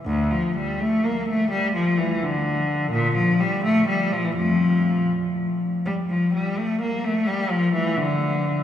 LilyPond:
\new Staff \with { instrumentName = "Cello" } { \clef bass \time 6/8 \key d \minor \tempo 4. = 85 d,8 f8 g8 a8 bes8 a8 | g8 f8 e8 d4. | \key f \major bes,8 f8 g8 a8 g8 f16 e16 | <f, f>4. r4. |
\key d \minor g8 f8 g8 a8 bes8 a8 | g8 f8 e8 d4. | }